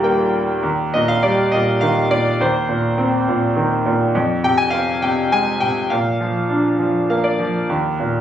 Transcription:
0.00 0.60 D#1 medium
0.00 0.60 D#2 medium
0.00 0.31 A#2 medium
0.00 0.61 D#3 medium
0.00 0.62 G3 medium
0.00 0.62 A#3 medium
0.00 0.04 G5 medium
0.00 0.61 G5 medium
0.63 2.36 D#2 medium
0.94 1.52 A#2 soft
0.94 1.10 D#5 medium
1.08 1.23 F5 medium
1.23 2.38 G3 soft
1.23 1.51 D5 medium
1.52 2.09 A#2 soft
1.52 1.80 D#5 medium
1.81 2.39 D#3 soft
1.81 2.09 F5 medium
2.11 2.40 A#2 soft
2.11 2.41 D5 medium
2.40 4.10 D#2 medium
2.40 3.24 C5 medium
2.69 3.27 A#2 soft
2.98 4.10 C4 soft
3.28 3.84 A#2 soft
3.56 4.12 D#3 soft
3.86 4.14 A#2 soft
4.15 5.86 F2 medium
4.44 5.02 C3 soft
4.44 4.59 G5 medium
4.58 4.71 G#5 medium
4.70 5.87 C4 soft
4.70 4.99 F5 medium
5.02 5.60 C3 soft
5.02 5.29 G5 medium
5.32 5.89 G#3 soft
5.32 5.59 G#5 medium
5.60 5.89 C3 soft
5.60 5.91 G5 medium
5.90 7.66 A#2 medium
5.90 6.75 F5 medium
6.21 6.78 F3 soft
6.50 7.66 D4 soft
6.79 7.38 F3 soft
7.10 7.68 A#3 soft
7.10 7.24 F5 medium
7.24 7.66 D5 medium
7.39 7.68 F3 soft
7.69 8.21 D#2 medium
8.00 8.21 A#2 soft

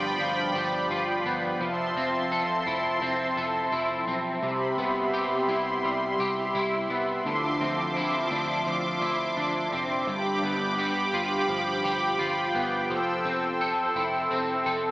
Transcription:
0.00 0.15 G1 loud
0.00 1.60 G2 medium
0.00 4.39 F3 medium
0.00 1.25 B3 medium
0.00 0.90 F4 medium
0.00 0.54 G4 medium
0.00 1.58 D5 medium
0.00 1.58 G5 medium
0.00 1.58 B5 medium
0.19 0.50 G1 medium
0.19 1.60 F3 medium
0.54 0.85 G1 medium
0.54 1.68 G4 medium
0.90 1.21 G1 loud
0.90 2.66 F4 medium
1.24 1.56 G1 medium
1.24 1.68 B3 medium
1.60 1.91 F1 loud
1.60 4.43 F3 medium
1.60 10.04 E5 medium
1.60 4.40 A5 medium
1.60 4.40 C6 medium
1.95 2.42 F1 medium
1.95 3.01 C4 medium
2.32 3.36 A4 medium
2.66 2.97 F1 loud
2.66 3.72 E4 medium
3.01 3.32 F1 medium
3.01 4.07 C4 medium
3.37 3.68 F1 medium
3.37 4.50 A4 medium
3.72 4.03 F1 loud
3.72 5.48 E4 medium
4.07 4.38 B1 medium
4.07 4.78 C4 medium
4.42 4.74 C2 medium
4.42 7.25 C3 medium
4.42 7.22 G4 medium
4.42 7.22 B5 medium
4.42 7.22 C6 medium
4.77 5.24 C2 loud
4.77 6.89 B3 medium
5.14 6.19 G4 medium
5.48 5.79 C2 loud
5.48 6.55 E4 medium
5.84 6.15 C2 medium
5.84 7.32 G3 medium
6.19 6.50 C2 medium
6.19 7.33 G4 medium
6.55 6.86 C2 loud
6.55 7.97 E4 medium
6.89 7.21 C2 medium
6.89 7.32 B3 medium
7.25 7.56 D2 loud
7.25 10.76 D3 medium
7.25 10.05 F3 medium
7.25 10.05 C6 medium
7.25 10.05 D6 medium
7.60 8.07 D2 medium
7.60 9.71 C4 medium
7.97 9.00 E4 medium
8.31 8.62 D2 loud
8.31 9.37 D4 medium
8.66 8.97 D2 medium
8.66 10.46 F3 medium
9.02 9.33 D2 loud
9.02 10.14 E4 medium
9.37 9.68 D2 medium
9.37 11.13 D4 medium
9.72 10.03 F1 medium
9.72 10.15 C4 medium
10.07 10.38 G1 loud
10.07 12.90 G2 medium
10.07 12.87 G4 medium
10.07 14.91 G5 medium
10.07 12.87 B5 medium
10.07 12.87 D6 medium
10.43 10.90 G1 medium
10.43 12.53 B3 medium
10.78 11.83 G4 medium
11.14 11.45 G1 loud
11.14 12.19 F4 medium
11.49 11.80 G1 loud
11.49 12.90 F3 medium
11.84 12.15 G1 medium
11.84 12.97 G4 medium
12.19 12.50 G1 medium
12.19 13.96 F4 medium
12.55 12.86 G1 medium
12.55 12.97 B3 medium
12.89 13.21 F1 medium
12.89 14.91 F3 medium
12.89 14.91 A4 medium
12.89 14.91 C6 medium
12.89 14.91 E6 medium
13.25 13.72 F1 loud
13.25 14.30 C4 medium
13.61 14.65 A4 medium
13.96 14.27 F1 loud
13.96 14.91 E4 medium
14.31 14.62 F1 medium
14.31 14.91 C4 medium
14.66 14.91 F1 medium
14.66 14.91 A4 medium

